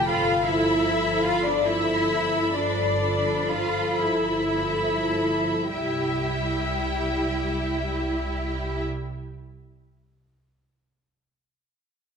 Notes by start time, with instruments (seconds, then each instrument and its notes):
0.06 double bass section G1, viola section F3 A4, cello section F4, violin section F5 B5
0.44 viola section F3 A4, cello section E4, violin section E5 B5
1.23 double bass section G1, cello section F4, violin section F5
1.44 cello section D4, violin section D5
1.64 viola section F3 A4, cello section E4, violin section E5 B5
2.53 double bass section G1, cello section D4, violin section D5
3.00 viola section F3 A4, violin section B5
3.49 cello section F4, violin section F5
3.99 double bass section G1, cello section E4, violin section E5
4.53 viola section F3 A4, violin section B5
5.71 double bass section C2, viola section G3 G4, cello section E4, violin section E5 G5